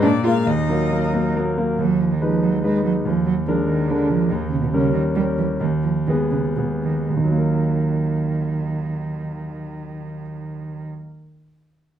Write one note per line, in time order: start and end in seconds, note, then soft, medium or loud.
0.02 0.24 A#2 medium
0.02 0.10 D4 medium
0.02 0.24 D5 medium
0.23 0.44 G#3 soft
0.23 0.45 A#3 soft
0.23 0.31 F4 medium
0.23 0.45 A#4 soft
0.23 0.48 F5 medium
0.46 0.68 D#2 medium
0.46 1.33 D#4 medium
0.46 1.35 D#5 medium
0.68 0.88 F#3 soft
0.68 0.89 A#3 soft
0.68 0.89 A#4 soft
0.91 1.11 F#3 soft
0.91 1.11 A#3 soft
0.91 1.11 A#4 soft
1.13 1.33 F#3 soft
1.13 1.33 A#3 soft
1.13 1.33 A#4 soft
1.35 1.55 F#3 soft
1.35 1.55 A#3 soft
1.35 1.55 A#4 soft
1.57 1.77 F#3 soft
1.57 1.77 A#3 soft
1.57 1.77 A#4 soft
1.78 2.20 D#2 soft
1.78 2.02 F#3 medium
2.01 2.13 F3 medium
2.11 2.23 D#3 medium
2.21 2.45 F3 medium
2.21 2.59 G#3 soft
2.21 2.59 D#4 soft
2.21 2.59 B4 soft
2.43 2.63 F#3 medium
2.64 2.84 G#3 medium
2.64 3.01 G#3 soft
2.64 3.01 D#4 soft
2.64 3.01 B4 soft
2.84 2.92 F#3 medium
3.05 3.45 D#2 soft
3.05 3.25 F3 medium
3.26 3.34 F#3 medium
3.46 3.54 F3 medium
3.46 3.85 G#3 soft
3.46 3.85 D4 soft
3.46 3.85 A#4 soft
3.67 3.90 D#3 medium
3.89 4.11 D3 medium
3.89 4.26 G#3 soft
3.89 4.27 D4 soft
3.89 4.27 A#4 soft
4.09 4.31 F3 medium
4.29 4.72 D#2 medium
4.29 4.50 D#3 medium
4.51 4.61 C#3 medium
4.61 4.66 B2 medium
4.71 4.93 C#3 medium
4.71 5.12 G3 soft
4.71 5.12 C#4 soft
4.71 5.13 A#4 soft
4.94 5.02 D#3 medium
5.15 5.23 G3 medium
5.15 5.57 G3 soft
5.15 5.57 C#4 soft
5.15 5.57 A#4 soft
5.38 5.46 E3 medium
5.60 6.06 D#2 soft
5.60 5.68 D#3 soft
5.83 5.91 F3 medium
6.07 6.15 D#3 medium
6.07 6.53 G#3 soft
6.07 6.53 B3 soft
6.07 6.54 G#4 soft
6.31 6.39 C#3 soft
6.56 6.64 B2 soft
6.56 7.06 G#3 soft
6.56 7.06 B3 soft
6.56 7.06 G#4 soft
6.83 7.08 D#3 soft
7.08 10.85 D#2 soft
7.08 10.84 D#3 soft
7.17 10.92 D#3 soft
7.24 10.99 F#3 soft
7.31 11.06 A#3 soft
7.38 11.13 A#4 soft